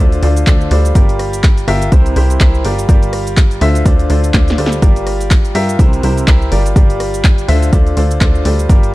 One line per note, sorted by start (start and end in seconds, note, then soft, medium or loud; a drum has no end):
0.00 0.21 D2 loud
0.00 0.20 D3 medium
0.00 0.20 F4 medium
0.00 0.20 A4 medium
0.00 0.20 C5 medium
0.00 0.20 D5 loud
0.12 closed hi-hat soft
0.12 shaker soft
0.22 0.45 D2 loud
0.22 0.44 D3 medium
0.22 0.44 F4 medium
0.22 0.44 A4 medium
0.22 0.44 C5 medium
0.22 0.44 D5 medium
0.22 open hi-hat loud
0.36 closed hi-hat soft
0.36 shaker medium
0.47 0.69 D2 loud
0.47 0.69 D3 medium
0.47 0.69 F4 medium
0.47 0.69 A4 medium
0.47 0.69 C5 medium
0.47 0.69 D5 loud
0.47 kick loud
0.47 clap loud
0.47 closed hi-hat medium
0.47 shaker medium
0.61 shaker soft
0.71 0.93 D2 medium
0.71 0.93 G3 medium
0.71 0.93 F4 medium
0.71 0.93 A4 medium
0.71 0.93 C5 medium
0.71 0.93 D5 medium
0.71 open hi-hat loud
0.85 closed hi-hat soft
0.85 shaker medium
0.95 1.66 G1 loud
0.95 1.65 G3 medium
0.95 1.65 F4 medium
0.95 1.65 G4 medium
0.95 1.65 A#4 medium
0.95 1.65 D5 loud
0.95 kick loud
0.95 closed hi-hat medium
0.95 shaker medium
1.09 closed hi-hat soft
1.09 shaker soft
1.19 cross-stick medium
1.19 open hi-hat loud
1.33 closed hi-hat medium
1.33 shaker medium
1.44 kick loud
1.44 clap loud
1.44 closed hi-hat medium
1.44 shaker medium
1.58 closed hi-hat soft
1.58 shaker soft
1.68 1.90 G1 loud
1.68 1.89 F4 loud
1.68 1.89 G4 medium
1.68 1.89 A#4 medium
1.68 1.89 E5 loud
1.68 cross-stick medium
1.68 open hi-hat loud
1.82 closed hi-hat medium
1.82 shaker medium
1.92 2.14 C2 loud
1.92 2.14 C3 medium
1.92 2.14 E4 medium
1.92 2.14 G4 medium
1.92 2.14 A#4 medium
1.92 2.14 C5 loud
1.92 kick loud
1.92 closed hi-hat medium
1.92 shaker medium
2.06 closed hi-hat soft
2.06 shaker soft
2.16 2.38 C2 loud
2.16 2.38 C3 medium
2.16 2.38 E4 medium
2.16 2.38 G4 medium
2.16 2.38 A#4 medium
2.16 2.38 C5 medium
2.16 open hi-hat loud
2.30 closed hi-hat soft
2.30 shaker medium
2.40 2.63 C2 loud
2.40 2.62 E4 medium
2.40 2.62 G4 medium
2.40 2.62 A#4 medium
2.40 2.62 C5 loud
2.40 kick loud
2.40 clap loud
2.40 closed hi-hat medium
2.40 shaker medium
2.55 shaker soft
2.65 2.87 G1 medium
2.65 2.86 G3 medium
2.65 2.86 F4 medium
2.65 2.86 G4 medium
2.65 2.86 A#4 medium
2.65 2.86 D5 medium
2.65 open hi-hat loud
2.78 closed hi-hat soft
2.78 shaker medium
2.89 3.59 G1 loud
2.89 3.59 G3 medium
2.89 3.59 F4 medium
2.89 3.59 G4 medium
2.89 3.59 A#4 medium
2.89 3.59 D5 loud
2.89 kick loud
2.89 closed hi-hat medium
2.89 shaker medium
3.03 closed hi-hat soft
3.03 shaker soft
3.13 cross-stick medium
3.13 open hi-hat loud
3.27 closed hi-hat medium
3.27 shaker medium
3.37 kick loud
3.37 clap loud
3.37 closed hi-hat medium
3.37 shaker medium
3.51 closed hi-hat soft
3.51 shaker soft
3.61 3.83 D2 loud
3.61 3.82 D3 medium
3.61 3.82 F4 medium
3.61 3.82 A4 medium
3.61 3.82 C5 medium
3.61 3.82 E5 loud
3.61 open hi-hat loud
3.75 closed hi-hat medium
3.75 shaker medium
3.85 4.08 D2 loud
3.85 4.07 D3 medium
3.85 4.07 F4 medium
3.85 4.07 A4 medium
3.85 4.07 C5 medium
3.85 4.07 D5 loud
3.85 kick loud
3.85 closed hi-hat medium
3.85 shaker medium
3.99 closed hi-hat soft
3.99 shaker soft
4.10 4.32 D2 loud
4.10 4.31 D3 medium
4.10 4.31 F4 medium
4.10 4.31 A4 medium
4.10 4.31 C5 medium
4.10 4.31 D5 medium
4.10 open hi-hat loud
4.24 closed hi-hat soft
4.24 shaker medium
4.34 4.56 D2 loud
4.34 4.56 D3 medium
4.34 4.56 F4 medium
4.34 4.56 A4 medium
4.34 4.56 C5 medium
4.34 4.56 D5 loud
4.34 kick loud
4.34 snare medium
4.34 clap loud
4.34 closed hi-hat medium
4.34 shaker medium
4.48 snare medium
4.48 closed hi-hat soft
4.48 shaker soft
4.58 4.80 D2 medium
4.58 4.80 G3 medium
4.58 4.80 F4 medium
4.58 4.80 A4 medium
4.58 4.80 C5 medium
4.58 4.80 D5 medium
4.58 open hi-hat loud
4.66 snare loud
4.72 closed hi-hat soft
4.72 shaker medium
4.82 5.53 G1 loud
4.82 5.52 G3 medium
4.82 5.52 F4 medium
4.82 5.52 G4 medium
4.82 5.52 A#4 medium
4.82 5.52 D5 loud
4.82 kick loud
4.82 closed hi-hat medium
4.82 shaker medium
4.96 closed hi-hat soft
4.96 shaker soft
5.07 cross-stick medium
5.07 open hi-hat loud
5.21 closed hi-hat medium
5.21 shaker medium
5.31 kick loud
5.31 clap loud
5.31 closed hi-hat medium
5.31 shaker medium
5.45 closed hi-hat soft
5.45 shaker soft
5.55 5.77 G2 loud
5.55 5.76 F4 loud
5.55 5.76 G4 medium
5.55 5.76 A#4 medium
5.55 5.76 E5 loud
5.55 cross-stick medium
5.55 open hi-hat loud
5.69 closed hi-hat medium
5.69 shaker medium
5.79 6.01 C2 loud
5.79 6.01 C3 medium
5.79 6.01 E4 medium
5.79 6.01 G4 medium
5.79 6.01 A#4 medium
5.79 6.01 C5 loud
5.79 kick loud
5.79 closed hi-hat medium
5.79 shaker medium
5.93 closed hi-hat soft
5.93 shaker soft
6.03 6.25 C2 loud
6.03 6.25 C3 medium
6.03 6.25 E4 medium
6.03 6.25 G4 medium
6.03 6.25 A#4 medium
6.03 6.25 C5 medium
6.03 open hi-hat loud
6.17 closed hi-hat soft
6.17 shaker medium
6.27 6.50 C2 loud
6.27 6.49 E4 loud
6.27 6.49 G4 medium
6.27 6.49 A#4 medium
6.27 6.49 C5 loud
6.27 kick loud
6.27 clap loud
6.27 closed hi-hat medium
6.27 shaker medium
6.42 shaker soft
6.51 6.74 G1 loud
6.51 6.73 G3 medium
6.51 6.73 F4 medium
6.51 6.73 G4 medium
6.51 6.73 A#4 medium
6.51 6.73 D5 medium
6.51 open hi-hat loud
6.66 closed hi-hat soft
6.66 shaker medium
6.76 7.46 G1 loud
6.76 7.46 G3 medium
6.76 7.46 F4 medium
6.76 7.46 G4 medium
6.76 7.46 A#4 medium
6.76 7.46 D5 loud
6.76 kick loud
6.76 closed hi-hat medium
6.76 shaker medium
6.90 closed hi-hat soft
6.90 shaker soft
7.00 cross-stick medium
7.00 open hi-hat loud
7.14 closed hi-hat medium
7.14 shaker medium
7.24 kick loud
7.24 clap loud
7.24 closed hi-hat medium
7.24 shaker medium
7.38 closed hi-hat soft
7.38 shaker soft
7.48 7.71 D2 loud
7.48 7.69 D3 loud
7.48 7.69 F4 medium
7.48 7.69 A4 medium
7.48 7.69 C5 medium
7.48 7.69 E5 loud
7.48 open hi-hat loud
7.62 closed hi-hat medium
7.62 shaker medium
7.73 7.95 D2 loud
7.73 7.94 D3 medium
7.73 7.94 F4 medium
7.73 7.94 A4 medium
7.73 7.94 C5 medium
7.73 7.94 D5 loud
7.73 kick loud
7.73 closed hi-hat medium
7.73 shaker medium
7.87 closed hi-hat soft
7.87 shaker soft
7.97 8.19 D2 loud
7.97 8.19 D3 medium
7.97 8.18 F4 medium
7.97 8.18 A4 medium
7.97 8.19 C5 medium
7.97 8.18 D5 medium
7.97 open hi-hat loud
8.11 closed hi-hat soft
8.11 shaker medium
8.21 8.43 D2 loud
8.21 8.43 D3 medium
8.21 8.43 F4 medium
8.21 8.43 A4 medium
8.21 8.43 C5 medium
8.21 8.43 D5 loud
8.21 kick loud
8.21 clap loud
8.21 closed hi-hat medium
8.21 shaker medium
8.35 shaker soft
8.45 8.67 D2 loud
8.45 8.67 G3 medium
8.45 8.67 F4 medium
8.45 8.67 A4 medium
8.45 8.67 C5 medium
8.45 8.67 D5 medium
8.45 open hi-hat loud
8.59 closed hi-hat soft
8.59 shaker medium
8.69 8.94 G1 loud
8.69 8.94 G3 medium
8.69 8.94 F4 medium
8.69 8.94 G4 medium
8.69 8.94 A#4 medium
8.69 8.94 D5 loud
8.69 kick loud
8.69 closed hi-hat medium
8.69 shaker medium
8.83 closed hi-hat soft
8.83 shaker soft